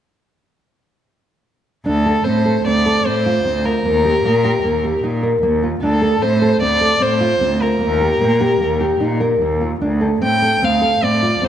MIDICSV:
0, 0, Header, 1, 4, 480
1, 0, Start_track
1, 0, Tempo, 398936
1, 2239, Time_signature, 5, 2, 24, 8
1, 13813, End_track
2, 0, Start_track
2, 0, Title_t, "Violin"
2, 0, Program_c, 0, 40
2, 2239, Note_on_c, 0, 69, 72
2, 2696, Note_on_c, 0, 72, 72
2, 2714, Note_off_c, 0, 69, 0
2, 3189, Note_off_c, 0, 72, 0
2, 3202, Note_on_c, 0, 74, 82
2, 3680, Note_on_c, 0, 72, 85
2, 3698, Note_off_c, 0, 74, 0
2, 4399, Note_on_c, 0, 70, 82
2, 4417, Note_off_c, 0, 72, 0
2, 6302, Note_off_c, 0, 70, 0
2, 7007, Note_on_c, 0, 69, 73
2, 7482, Note_on_c, 0, 72, 78
2, 7500, Note_off_c, 0, 69, 0
2, 7946, Note_off_c, 0, 72, 0
2, 7954, Note_on_c, 0, 74, 86
2, 8440, Note_on_c, 0, 72, 91
2, 8458, Note_off_c, 0, 74, 0
2, 9171, Note_on_c, 0, 70, 77
2, 9189, Note_off_c, 0, 72, 0
2, 11092, Note_off_c, 0, 70, 0
2, 12309, Note_on_c, 0, 79, 81
2, 12803, Note_on_c, 0, 77, 77
2, 12821, Note_off_c, 0, 79, 0
2, 13284, Note_on_c, 0, 74, 80
2, 13302, Note_off_c, 0, 77, 0
2, 13771, Note_on_c, 0, 72, 72
2, 13789, Note_off_c, 0, 74, 0
2, 13813, Note_off_c, 0, 72, 0
2, 13813, End_track
3, 0, Start_track
3, 0, Title_t, "Nylon-string guitar"
3, 0, Program_c, 1, 24
3, 2234, Note_on_c, 1, 62, 65
3, 2454, Note_off_c, 1, 62, 0
3, 2479, Note_on_c, 1, 69, 58
3, 2697, Note_off_c, 1, 69, 0
3, 2712, Note_on_c, 1, 60, 64
3, 2933, Note_off_c, 1, 60, 0
3, 2955, Note_on_c, 1, 69, 56
3, 3174, Note_off_c, 1, 69, 0
3, 3203, Note_on_c, 1, 60, 60
3, 3418, Note_off_c, 1, 60, 0
3, 3441, Note_on_c, 1, 69, 55
3, 3657, Note_off_c, 1, 69, 0
3, 3674, Note_on_c, 1, 60, 70
3, 3894, Note_off_c, 1, 60, 0
3, 3923, Note_on_c, 1, 65, 64
3, 4138, Note_off_c, 1, 65, 0
3, 4155, Note_on_c, 1, 60, 64
3, 4372, Note_off_c, 1, 60, 0
3, 4395, Note_on_c, 1, 65, 57
3, 4611, Note_off_c, 1, 65, 0
3, 4635, Note_on_c, 1, 58, 63
3, 4850, Note_off_c, 1, 58, 0
3, 4874, Note_on_c, 1, 67, 61
3, 5089, Note_off_c, 1, 67, 0
3, 5112, Note_on_c, 1, 58, 66
3, 5327, Note_off_c, 1, 58, 0
3, 5348, Note_on_c, 1, 67, 59
3, 5564, Note_off_c, 1, 67, 0
3, 5585, Note_on_c, 1, 58, 67
3, 5801, Note_off_c, 1, 58, 0
3, 5827, Note_on_c, 1, 67, 63
3, 6041, Note_off_c, 1, 67, 0
3, 6059, Note_on_c, 1, 63, 72
3, 6275, Note_off_c, 1, 63, 0
3, 6293, Note_on_c, 1, 70, 64
3, 6510, Note_off_c, 1, 70, 0
3, 6531, Note_on_c, 1, 58, 68
3, 6748, Note_off_c, 1, 58, 0
3, 6776, Note_on_c, 1, 65, 58
3, 6989, Note_off_c, 1, 65, 0
3, 7010, Note_on_c, 1, 62, 67
3, 7224, Note_off_c, 1, 62, 0
3, 7240, Note_on_c, 1, 69, 62
3, 7458, Note_off_c, 1, 69, 0
3, 7488, Note_on_c, 1, 60, 65
3, 7701, Note_off_c, 1, 60, 0
3, 7723, Note_on_c, 1, 69, 64
3, 7937, Note_off_c, 1, 69, 0
3, 7958, Note_on_c, 1, 60, 68
3, 8174, Note_off_c, 1, 60, 0
3, 8193, Note_on_c, 1, 69, 55
3, 8410, Note_off_c, 1, 69, 0
3, 8425, Note_on_c, 1, 60, 70
3, 8646, Note_off_c, 1, 60, 0
3, 8671, Note_on_c, 1, 65, 68
3, 8891, Note_off_c, 1, 65, 0
3, 8913, Note_on_c, 1, 60, 64
3, 9133, Note_off_c, 1, 60, 0
3, 9155, Note_on_c, 1, 65, 61
3, 9373, Note_off_c, 1, 65, 0
3, 9392, Note_on_c, 1, 58, 65
3, 9612, Note_off_c, 1, 58, 0
3, 9633, Note_on_c, 1, 67, 60
3, 9852, Note_off_c, 1, 67, 0
3, 9876, Note_on_c, 1, 58, 66
3, 10094, Note_off_c, 1, 58, 0
3, 10115, Note_on_c, 1, 67, 60
3, 10334, Note_off_c, 1, 67, 0
3, 10349, Note_on_c, 1, 58, 63
3, 10571, Note_off_c, 1, 58, 0
3, 10597, Note_on_c, 1, 67, 53
3, 10817, Note_off_c, 1, 67, 0
3, 10834, Note_on_c, 1, 63, 70
3, 11057, Note_off_c, 1, 63, 0
3, 11075, Note_on_c, 1, 70, 66
3, 11300, Note_off_c, 1, 70, 0
3, 11326, Note_on_c, 1, 58, 63
3, 11548, Note_off_c, 1, 58, 0
3, 11560, Note_on_c, 1, 65, 58
3, 11785, Note_off_c, 1, 65, 0
3, 11808, Note_on_c, 1, 62, 64
3, 12030, Note_off_c, 1, 62, 0
3, 12043, Note_on_c, 1, 69, 55
3, 12267, Note_off_c, 1, 69, 0
3, 12290, Note_on_c, 1, 60, 63
3, 12511, Note_off_c, 1, 60, 0
3, 12539, Note_on_c, 1, 69, 56
3, 12756, Note_off_c, 1, 69, 0
3, 12784, Note_on_c, 1, 60, 68
3, 12999, Note_off_c, 1, 60, 0
3, 13014, Note_on_c, 1, 69, 58
3, 13233, Note_off_c, 1, 69, 0
3, 13263, Note_on_c, 1, 60, 70
3, 13478, Note_off_c, 1, 60, 0
3, 13508, Note_on_c, 1, 65, 64
3, 13719, Note_off_c, 1, 65, 0
3, 13736, Note_on_c, 1, 60, 64
3, 13813, Note_off_c, 1, 60, 0
3, 13813, End_track
4, 0, Start_track
4, 0, Title_t, "Cello"
4, 0, Program_c, 2, 42
4, 2230, Note_on_c, 2, 38, 88
4, 2683, Note_off_c, 2, 38, 0
4, 2717, Note_on_c, 2, 45, 75
4, 3165, Note_off_c, 2, 45, 0
4, 3190, Note_on_c, 2, 38, 76
4, 3641, Note_off_c, 2, 38, 0
4, 3675, Note_on_c, 2, 45, 70
4, 4123, Note_off_c, 2, 45, 0
4, 4146, Note_on_c, 2, 38, 76
4, 4596, Note_off_c, 2, 38, 0
4, 4640, Note_on_c, 2, 39, 84
4, 5081, Note_off_c, 2, 39, 0
4, 5114, Note_on_c, 2, 46, 78
4, 5556, Note_off_c, 2, 46, 0
4, 5582, Note_on_c, 2, 39, 68
4, 6027, Note_off_c, 2, 39, 0
4, 6057, Note_on_c, 2, 46, 74
4, 6501, Note_off_c, 2, 46, 0
4, 6533, Note_on_c, 2, 39, 80
4, 6975, Note_off_c, 2, 39, 0
4, 7006, Note_on_c, 2, 38, 81
4, 7449, Note_off_c, 2, 38, 0
4, 7477, Note_on_c, 2, 45, 81
4, 7922, Note_off_c, 2, 45, 0
4, 7962, Note_on_c, 2, 38, 75
4, 8404, Note_off_c, 2, 38, 0
4, 8435, Note_on_c, 2, 45, 75
4, 8883, Note_off_c, 2, 45, 0
4, 8913, Note_on_c, 2, 38, 77
4, 9363, Note_off_c, 2, 38, 0
4, 9398, Note_on_c, 2, 39, 91
4, 9844, Note_off_c, 2, 39, 0
4, 9880, Note_on_c, 2, 46, 70
4, 10326, Note_off_c, 2, 46, 0
4, 10365, Note_on_c, 2, 39, 76
4, 10812, Note_off_c, 2, 39, 0
4, 10839, Note_on_c, 2, 46, 77
4, 11293, Note_off_c, 2, 46, 0
4, 11329, Note_on_c, 2, 39, 78
4, 11782, Note_off_c, 2, 39, 0
4, 11814, Note_on_c, 2, 38, 85
4, 12264, Note_off_c, 2, 38, 0
4, 12297, Note_on_c, 2, 45, 71
4, 12744, Note_off_c, 2, 45, 0
4, 12775, Note_on_c, 2, 38, 71
4, 13223, Note_off_c, 2, 38, 0
4, 13246, Note_on_c, 2, 45, 74
4, 13696, Note_off_c, 2, 45, 0
4, 13730, Note_on_c, 2, 38, 85
4, 13813, Note_off_c, 2, 38, 0
4, 13813, End_track
0, 0, End_of_file